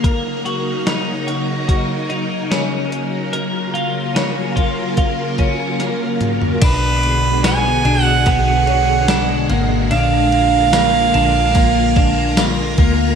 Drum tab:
CC |----------------|----------------|x---------------|----------------|
RD |----------------|----------------|x-x-x-x-x-x-x-x-|x-x-x-x-x-x-x-x-|
HH |x-x-x-x-x-x-x-x-|x-x-x-x-x-x-x-x-|----------------|----------------|
TB |----------------|----------------|----x-------x---|----x-------x---|
SD |----o-------o---|----o-------o---|----o-------o---|----o-------o---|
T2 |----------------|--------------o-|----------------|----------------|
FT |----------------|---------------o|----------------|----------------|
BD |o-------o-------|------o-o-o-----|o-------o-------|--------o-o---o-|